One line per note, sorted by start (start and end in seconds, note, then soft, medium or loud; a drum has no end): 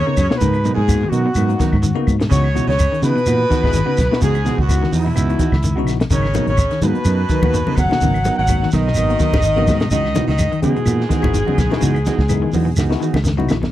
0.00 0.37 C#3 medium
0.00 0.34 C#5 loud
0.00 0.40 C#5 medium
0.06 0.25 C#3 medium
0.06 0.20 B3 medium
0.06 0.20 D#4 medium
0.06 0.20 A#4 medium
0.17 0.27 F#2 medium
0.17 kick medium
0.17 closed hi-hat medium
0.17 claves medium
0.17 shekere soft
0.30 0.39 B2 medium
0.30 0.50 A#3 medium
0.30 0.50 B3 medium
0.30 0.50 D#4 medium
0.30 0.50 F#4 medium
0.30 snare medium
0.35 0.73 B2 medium
0.35 0.76 B4 loud
0.35 0.74 B4 loud
0.41 0.69 G#2 loud
0.41 0.60 C#3 medium
0.41 0.56 B3 medium
0.41 0.56 D#4 medium
0.41 0.56 A#4 medium
0.41 muted clean electric guitar stroke medium
0.41 kick medium
0.41 closed hi-hat medium
0.41 shekere medium
0.54 closed hi-hat soft
0.54 claves medium
0.64 0.83 B2 medium
0.64 0.80 F#3 medium
0.64 0.80 B3 medium
0.64 0.80 D#4 medium
0.64 0.80 A#4 medium
0.64 closed hi-hat medium
0.64 shekere soft
0.74 1.10 G#2 medium
0.74 1.04 G#2 medium
0.74 1.08 G#4 loud
0.74 1.11 G#4 medium
0.87 1.08 A#3 medium
0.87 1.08 B3 medium
0.87 1.08 D#4 medium
0.87 1.09 F#4 medium
0.87 kick medium
0.87 closed hi-hat medium
0.87 claves medium
0.87 shekere medium
1.03 1.21 D#3 medium
1.08 2.05 F#2 medium
1.08 1.30 B2 medium
1.08 1.27 F#3 medium
1.08 1.27 B3 medium
1.08 2.06 F#4 medium
1.13 1.28 D#4 medium
1.13 1.28 A#4 medium
1.13 closed hi-hat medium
1.13 shekere soft
1.26 1.44 B2 medium
1.35 1.54 G#2 medium
1.35 1.51 F#3 medium
1.35 1.51 B3 medium
1.35 1.52 D#4 medium
1.35 1.52 A#4 medium
1.35 closed hi-hat medium
1.35 claves medium
1.35 shekere loud
1.48 1.63 A#3 medium
1.48 1.64 B3 medium
1.48 1.64 D#4 medium
1.48 1.64 F#4 medium
1.48 closed hi-hat soft
1.60 1.78 D#3 medium
1.60 1.75 F#3 medium
1.60 1.75 B3 medium
1.60 1.76 D#4 medium
1.60 1.76 A#4 medium
1.60 kick medium
1.60 snare soft
1.60 closed hi-hat medium
1.60 shekere soft
1.73 1.91 G#2 medium
1.73 kick medium
1.73 claves medium
1.83 1.93 D#3 medium
1.83 closed hi-hat medium
1.83 shekere medium
1.95 2.15 C#3 medium
1.95 2.15 A#3 loud
1.95 2.15 B3 medium
1.95 2.11 B3 medium
1.95 2.15 D#4 medium
1.95 2.10 D#4 medium
1.95 2.15 F#4 loud
1.95 2.10 A#4 medium
2.07 2.25 G#2 medium
2.07 kick medium
2.07 closed hi-hat medium
2.07 claves medium
2.07 shekere soft
2.20 2.28 B2 medium
2.20 snare medium
2.20 closed hi-hat soft
2.29 2.59 C#2 loud
2.29 2.64 C#3 medium
2.29 2.49 C#3 loud
2.29 2.46 E3 medium
2.29 2.46 B3 medium
2.29 2.47 D#4 medium
2.29 2.47 F#4 medium
2.29 2.65 C#5 loud
2.29 kick medium
2.29 snare soft
2.29 closed hi-hat medium
2.29 shekere medium
2.44 claves medium
2.54 2.74 B2 medium
2.54 2.69 E3 medium
2.54 2.71 B3 medium
2.54 2.70 B3 medium
2.54 2.71 D#4 medium
2.54 2.70 D#4 medium
2.54 2.72 E4 medium
2.54 2.70 F#4 medium
2.54 2.72 F#4 medium
2.54 closed hi-hat medium
2.54 shekere soft
2.67 2.86 C#2 medium
2.67 3.05 C#3 medium
2.67 3.00 C#5 loud
2.67 3.06 C#5 medium
2.67 closed hi-hat soft
2.71 snare soft
2.79 kick medium
2.79 closed hi-hat medium
2.79 claves medium
2.79 shekere medium
2.92 3.10 D#3 medium
2.92 closed hi-hat soft
3.02 4.22 B2 medium
3.02 3.12 C#3 medium
3.02 3.18 E3 medium
3.02 3.23 B3 medium
3.02 3.18 B3 medium
3.02 3.22 D#4 medium
3.02 3.18 D#4 medium
3.02 3.23 E4 medium
3.02 3.23 F#4 medium
3.02 4.21 B4 loud
3.02 4.23 B4 loud
3.02 muted clean electric guitar stroke medium
3.02 closed hi-hat medium
3.02 shekere soft
3.16 3.34 B2 medium
3.16 closed hi-hat soft
3.26 3.45 A#2 medium
3.26 3.41 E3 medium
3.26 3.42 B3 medium
3.26 3.42 D#4 medium
3.26 3.42 F#4 medium
3.26 closed hi-hat medium
3.26 claves medium
3.26 shekere loud
3.49 3.69 D#3 medium
3.49 3.65 E3 medium
3.49 3.65 B3 medium
3.49 3.65 D#4 medium
3.49 3.66 F#4 medium
3.49 muted fingered electric bass stroke soft
3.49 kick medium
3.49 snare soft
3.49 closed hi-hat soft
3.49 shekere soft
3.63 3.81 G#1 medium
3.63 3.79 B3 medium
3.63 3.79 D#4 medium
3.63 3.79 E4 medium
3.63 3.79 G#4 loud
3.63 kick medium
3.63 snare soft
3.63 claves medium
3.73 3.84 D#3 medium
3.73 closed hi-hat medium
3.73 shekere medium
3.85 4.05 C#3 medium
3.85 4.00 B3 medium
3.85 4.00 D#4 medium
3.85 3.99 F#4 medium
3.97 4.08 B1 medium
3.97 kick medium
3.97 snare soft
3.97 closed hi-hat medium
3.97 claves medium
3.97 shekere soft
4.11 4.19 B2 medium
4.11 4.31 B3 medium
4.11 4.31 D#4 medium
4.11 4.31 E4 medium
4.11 4.31 F#4 medium
4.11 snare medium
4.20 4.50 C#2 loud
4.20 4.57 G#2 medium
4.20 4.40 C#3 loud
4.20 4.36 E3 medium
4.20 4.36 B3 medium
4.20 4.36 D#4 medium
4.20 4.36 F#4 medium
4.20 4.56 G#4 medium
4.20 4.56 G#4 loud
4.20 kick medium
4.20 snare soft
4.20 closed hi-hat medium
4.20 shekere medium
4.35 closed hi-hat soft
4.35 claves medium
4.45 4.64 B2 medium
4.45 4.60 E3 medium
4.45 4.60 B3 medium
4.45 4.60 D#4 medium
4.45 4.61 F#4 medium
4.45 snare soft
4.45 closed hi-hat medium
4.45 shekere soft
4.58 4.84 C#2 loud
4.58 4.91 F#2 medium
4.58 4.91 F#4 medium
4.58 4.92 F#4 medium
4.58 kick medium
4.69 4.89 B3 medium
4.69 4.89 D#4 medium
4.69 4.89 E4 medium
4.69 4.89 F#4 medium
4.69 kick medium
4.69 closed hi-hat medium
4.69 claves medium
4.69 shekere medium
4.82 5.01 D#3 medium
4.82 snare soft
4.92 5.10 E2 medium
4.92 5.85 E2 medium
4.92 5.07 E3 medium
4.92 5.07 B3 medium
4.92 5.08 D#4 medium
4.92 5.85 E4 medium
4.92 5.08 F#4 medium
4.92 open hi-hat medium
4.92 shekere soft
4.97 5.85 E4 medium
5.06 5.25 B2 medium
5.15 5.35 C#2 medium
5.15 5.31 E3 medium
5.15 5.31 B3 medium
5.15 5.31 D#4 medium
5.15 5.31 F#4 medium
5.15 closed hi-hat medium
5.15 claves medium
5.15 shekere medium
5.29 5.44 B3 medium
5.29 5.44 D#4 medium
5.29 5.45 E4 medium
5.29 5.45 F#4 medium
5.29 closed hi-hat soft
5.38 5.59 D#3 medium
5.38 5.54 E3 medium
5.38 5.54 D#4 medium
5.38 5.55 F#4 medium
5.38 muted clean electric guitar stroke medium
5.38 kick medium
5.38 closed hi-hat medium
5.38 shekere soft
5.52 5.86 C#2 medium
5.52 kick medium
5.52 snare soft
5.52 claves medium
5.63 5.74 D#3 medium
5.63 closed hi-hat medium
5.63 shekere medium
5.76 5.95 C#3 medium
5.76 5.90 B3 soft
5.76 5.97 B3 medium
5.76 5.97 D#4 medium
5.76 5.97 E4 medium
5.76 5.89 F#4 medium
5.76 5.97 F#4 loud
5.86 6.04 A#1 medium
5.86 snare soft
5.86 closed hi-hat medium
5.86 claves medium
5.86 shekere soft
6.00 6.09 B2 medium
6.00 snare medium
6.00 closed hi-hat soft
6.10 6.39 G#1 medium
6.10 6.29 C#3 loud
6.10 6.45 C#3 medium
6.10 6.26 F#3 medium
6.10 6.26 D#4 medium
6.10 6.26 A#4 medium
6.10 6.46 C#5 loud
6.10 6.46 C#5 medium
6.10 muted clean electric guitar stroke medium
6.10 kick loud
6.10 closed hi-hat medium
6.10 shekere loud
6.23 snare soft
6.23 claves medium
6.34 6.53 B2 medium
6.34 6.49 F#3 medium
6.34 6.52 A#3 medium
6.34 6.50 B3 medium
6.34 6.51 B3 medium
6.34 6.50 D#4 medium
6.34 6.52 D#4 medium
6.34 6.52 F#4 medium
6.34 6.50 A#4 medium
6.34 closed hi-hat medium
6.34 high conga medium
6.34 shekere soft
6.47 6.65 G#1 medium
6.47 6.80 C#3 medium
6.47 6.80 C#5 loud
6.47 6.81 C#5 medium
6.47 closed hi-hat soft
6.57 kick medium
6.57 closed hi-hat medium
6.57 claves medium
6.57 shekere medium
6.71 6.90 D#3 medium
6.71 snare soft
6.71 closed hi-hat soft
6.82 6.92 G#2 medium
6.82 7.77 B2 medium
6.82 6.97 F#3 medium
6.82 7.03 A#3 medium
6.82 6.97 B3 medium
6.82 7.03 B3 medium
6.82 6.98 D#4 medium
6.82 7.03 D#4 medium
6.82 7.03 F#4 medium
6.82 6.98 A#4 medium
6.82 7.74 B4 loud
6.82 closed hi-hat medium
6.82 high conga medium
6.82 low conga medium
6.82 shekere soft
6.86 7.81 B4 medium
6.95 closed hi-hat soft
7.05 7.24 F#2 medium
7.05 7.21 F#3 medium
7.05 7.21 B3 medium
7.05 7.22 D#4 medium
7.05 7.22 A#4 medium
7.05 closed hi-hat medium
7.05 claves medium
7.05 shekere loud
7.29 7.49 D#3 medium
7.29 7.45 F#3 medium
7.29 7.45 D#4 medium
7.29 7.45 A#4 medium
7.29 kick medium
7.29 closed hi-hat soft
7.29 shekere soft
7.42 7.61 D#2 medium
7.42 7.58 A#3 medium
7.42 7.58 B3 medium
7.42 7.58 D#4 medium
7.42 7.58 F#4 medium
7.42 kick medium
7.42 high conga medium
7.42 claves medium
7.54 7.64 D#3 medium
7.54 closed hi-hat medium
7.54 shekere medium
7.67 7.86 C#3 medium
7.67 7.81 B3 soft
7.67 7.81 D#4 medium
7.67 7.80 A#4 medium
7.67 high conga medium
7.76 7.87 F#1 medium
7.76 8.37 F#3 loud
7.76 8.36 F#5 loud
7.76 kick medium
7.76 closed hi-hat medium
7.76 low conga medium
7.76 claves medium
7.76 shekere soft
7.80 8.39 F#5 loud
7.89 7.99 B2 medium
7.89 8.09 A#3 medium
7.89 8.09 B3 medium
7.89 8.09 D#4 medium
7.89 8.10 F#4 medium
7.89 snare medium
7.89 low conga medium
8.01 8.29 G#1 loud
8.01 8.21 C#3 medium
8.01 8.16 F#3 medium
8.01 8.16 B3 medium
8.01 8.17 D#4 medium
8.01 8.17 A#4 medium
8.01 kick medium
8.01 closed hi-hat medium
8.01 shekere medium
8.14 closed hi-hat soft
8.14 claves medium
8.25 8.41 F#3 medium
8.25 8.41 B3 medium
8.25 8.41 D#4 medium
8.25 8.41 A#4 medium
8.25 muted clean electric guitar stroke medium
8.25 closed hi-hat medium
8.25 high conga medium
8.25 shekere soft
8.37 8.65 G#1 loud
8.37 8.70 F#3 medium
8.37 8.70 F#5 loud
8.37 8.72 F#5 loud
8.48 8.69 A#3 medium
8.48 8.69 B3 medium
8.48 8.69 D#4 medium
8.48 8.69 F#4 medium
8.48 kick medium
8.48 closed hi-hat medium
8.48 high conga medium
8.48 claves medium
8.48 shekere medium
8.63 8.82 D#3 medium
8.63 snare soft
8.71 8.91 B1 medium
8.71 9.87 D#3 medium
8.71 8.88 B3 medium
8.71 8.88 D#4 medium
8.71 8.88 A#4 medium
8.71 9.88 D#5 loud
8.71 snare soft
8.71 closed hi-hat medium
8.71 high conga medium
8.71 low conga medium
8.71 shekere soft
8.88 9.05 B2 medium
8.88 snare soft
8.95 9.15 G#1 medium
8.95 9.11 F#3 medium
8.95 9.12 B3 medium
8.95 9.12 D#4 medium
8.95 9.12 A#4 medium
8.95 closed hi-hat medium
8.95 claves medium
8.95 shekere loud
9.09 9.24 A#3 medium
9.09 9.24 B3 medium
9.09 9.24 D#4 medium
9.09 9.25 F#4 medium
9.09 closed hi-hat soft
9.19 9.39 D#3 medium
9.19 9.35 F#3 medium
9.19 9.35 B3 medium
9.19 9.36 D#4 medium
9.19 9.36 A#4 medium
9.19 kick medium
9.19 closed hi-hat medium
9.19 shekere soft
9.33 9.69 G#1 medium
9.33 kick medium
9.33 snare soft
9.33 high conga loud
9.33 claves medium
9.42 9.54 D#3 medium
9.42 closed hi-hat medium
9.42 shekere loud
9.56 9.76 C#3 medium
9.56 9.76 A#3 loud
9.56 9.76 B3 medium
9.56 9.71 B3 medium
9.56 9.76 D#4 medium
9.56 9.70 D#4 medium
9.56 9.76 F#4 loud
9.56 9.70 A#4 medium
9.56 high conga medium
9.67 9.86 G#2 medium
9.67 kick medium
9.67 snare soft
9.67 closed hi-hat medium
9.67 high conga medium
9.67 low conga medium
9.67 claves medium
9.67 shekere soft
9.80 9.89 B2 medium
9.80 snare medium
9.80 closed hi-hat soft
9.90 10.19 C#2 loud
9.90 10.11 C#3 loud
9.90 10.26 D#3 medium
9.90 10.07 E3 medium
9.90 10.07 D#4 medium
9.90 10.07 F#4 medium
9.90 10.25 D#5 loud
9.90 10.26 D#5 loud
9.90 muted clean electric guitar stroke medium
9.90 kick medium
9.90 closed hi-hat medium
9.90 shekere loud
10.05 snare soft
10.05 claves medium
10.14 10.34 B2 medium
10.14 10.30 E3 medium
10.14 10.31 B3 medium
10.14 10.31 D#4 medium
10.14 10.31 E4 medium
10.14 10.32 F#4 medium
10.14 10.31 F#4 medium
10.14 snare soft
10.14 closed hi-hat medium
10.14 high conga loud
10.14 shekere soft
10.27 10.46 C#2 medium
10.27 10.60 D#3 medium
10.27 10.60 D#5 medium
10.27 10.60 D#5 loud
10.27 snare soft
10.27 closed hi-hat soft
10.39 kick medium
10.39 closed hi-hat medium
10.39 high conga medium
10.39 claves medium
10.39 shekere medium
10.52 10.71 D#3 medium
10.52 closed hi-hat soft
10.62 13.21 G#2 medium
10.62 10.72 C#3 loud
10.62 10.78 E3 medium
10.62 10.83 B3 medium
10.62 10.78 B3 medium
10.62 10.83 D#4 medium
10.62 10.79 D#4 medium
10.62 10.83 E4 medium
10.62 10.83 F#4 medium
10.62 10.79 F#4 medium
10.62 13.21 G#4 medium
10.62 closed hi-hat medium
10.62 high conga medium
10.62 low conga medium
10.62 shekere soft
10.76 10.95 B2 medium
10.76 closed hi-hat soft
10.86 11.04 A#2 loud
10.86 11.01 E3 medium
10.86 11.02 B3 medium
10.86 11.02 D#4 medium
10.86 11.02 F#4 medium
10.86 closed hi-hat medium
10.86 claves medium
10.86 shekere loud
11.01 snare soft
11.09 11.28 D#3 medium
11.09 11.25 E3 medium
11.09 11.25 B3 medium
11.09 11.25 D#4 medium
11.09 11.25 F#4 medium
11.09 muted fingered electric bass stroke soft
11.09 kick medium
11.09 snare soft
11.09 closed hi-hat medium
11.09 shekere soft
11.22 11.42 G#1 medium
11.22 11.38 B3 medium
11.22 11.38 D#4 medium
11.22 11.38 E4 medium
11.22 11.38 F#4 medium
11.22 kick medium
11.22 high conga loud
11.22 claves medium
11.34 11.44 D#3 medium
11.34 closed hi-hat medium
11.34 shekere medium
11.46 11.66 C#3 medium
11.46 11.61 B3 medium
11.46 11.60 D#4 medium
11.46 11.60 F#4 medium
11.46 high conga medium
11.58 11.68 B1 medium
11.58 kick medium
11.58 snare soft
11.58 closed hi-hat soft
11.58 high conga medium
11.58 low conga medium
11.58 claves medium
11.58 shekere soft
11.70 11.79 B2 medium
11.70 11.90 B3 medium
11.70 11.90 D#4 medium
11.70 11.91 E4 medium
11.70 11.90 F#4 loud
11.70 snare medium
11.70 high conga medium
11.81 12.10 C#2 medium
11.81 12.00 C#3 loud
11.81 11.97 E3 medium
11.81 11.97 B3 medium
11.81 11.97 D#4 medium
11.81 11.97 F#4 medium
11.81 kick medium
11.81 closed hi-hat medium
11.81 shekere medium
11.95 closed hi-hat soft
11.95 claves medium
12.06 12.21 E3 medium
12.06 12.21 B3 medium
12.06 12.21 D#4 medium
12.06 12.21 F#4 medium
12.06 snare soft
12.06 closed hi-hat medium
12.06 high conga loud
12.06 shekere soft
12.19 12.45 C#2 medium
12.19 kick medium
12.19 snare soft
12.29 12.49 B3 medium
12.29 12.50 D#4 medium
12.29 12.50 E4 medium
12.29 12.50 G#4 medium
12.29 kick medium
12.29 closed hi-hat medium
12.29 high conga medium
12.29 claves medium
12.29 shekere medium
12.42 12.61 D#3 medium
12.53 12.71 E2 medium
12.53 12.69 E3 medium
12.53 12.69 B3 medium
12.53 12.69 D#4 medium
12.53 12.69 F#4 medium
12.53 open hi-hat medium
12.53 high conga medium
12.53 low conga medium
12.53 shekere soft
12.65 12.84 B2 medium
12.77 12.95 C#2 medium
12.77 12.92 E3 medium
12.77 12.93 B3 medium
12.77 12.93 D#4 medium
12.77 12.93 F#4 medium
12.77 snare medium
12.77 claves medium
12.77 shekere loud
12.89 13.05 B3 medium
12.89 13.05 D#4 medium
12.89 13.05 E4 medium
12.89 13.05 F#4 loud
12.89 snare medium
13.00 13.19 D#3 medium
13.00 13.16 E3 medium
13.00 13.16 B3 medium
13.00 13.17 D#4 medium
13.00 13.17 F#4 medium
13.00 shekere soft
13.14 13.48 C#2 medium
13.14 snare medium
13.14 high conga medium
13.14 claves medium
13.24 13.34 D#3 medium
13.24 snare medium
13.24 shekere loud
13.37 13.56 C#3 medium
13.37 13.57 B3 loud
13.37 13.52 B3 medium
13.37 13.57 D#4 medium
13.37 13.52 D#4 medium
13.37 13.57 E4 medium
13.37 13.57 F#4 loud
13.37 13.51 F#4 medium
13.37 high conga medium
13.48 13.66 A#1 medium
13.48 snare medium
13.48 low conga medium
13.48 claves medium
13.48 shekere soft
13.62 13.70 B2 medium
13.62 snare medium
13.62 high conga medium
13.62 low conga medium